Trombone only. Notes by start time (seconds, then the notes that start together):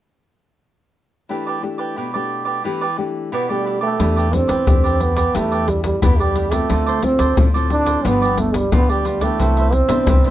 3.34 B3
3.51 G3
3.83 A3
4.34 C4
5.01 B3
5.36 A3
5.68 G3
5.84 G3
6.03 B3
6.20 G3
6.52 A3
7.04 C4
7.72 D4
8.06 B3
8.39 A3
8.55 G3
8.73 B3
8.90 G3
9.22 A3
9.73 C4